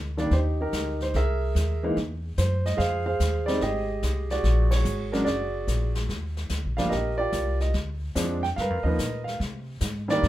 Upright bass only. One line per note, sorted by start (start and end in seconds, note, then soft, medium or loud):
0.00 0.30 D2 medium
0.31 0.71 D#2 medium
0.73 1.13 D2 medium
1.14 1.54 C2 medium
1.55 1.95 D#2 medium
1.97 2.37 E2 medium
2.38 2.78 F#2 medium
2.78 3.19 F2 medium
3.20 3.60 D#2 medium
3.61 4.01 G#1 medium
4.03 4.43 C2 medium
4.44 4.84 A#1 medium
4.85 5.25 G#1 medium
5.26 5.67 F#1 medium
5.67 6.08 A#1 medium
6.09 6.49 D#2 medium
6.50 6.67 D2 medium
6.65 6.78 A#1 medium
6.78 6.91 G1 medium
6.92 7.32 A#1 medium
7.33 7.73 C2 medium
7.74 8.15 D2 medium
8.15 8.56 F2 medium
8.58 8.70 G2 medium
8.70 8.83 F2 soft
8.84 8.97 D#2 medium
8.99 9.39 A#2 medium
9.40 9.80 C3 medium
9.81 10.21 G#2 medium
10.23 10.28 G2 medium